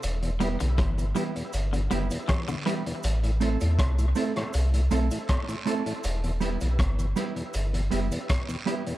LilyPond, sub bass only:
\new Staff \with { instrumentName = "Sub bass" } { \clef bass \time 4/4 \key e \minor \tempo 4 = 80 e,,8. b,,16 g,,8 r8 g,,8 fis,,16 r4 r16 | a,,8. e,16 c,8 r8 c,8 b,,16 r4 r16 | e,,8. b,,16 g,,8 r8 g,,8 fis,,16 r4 r16 | }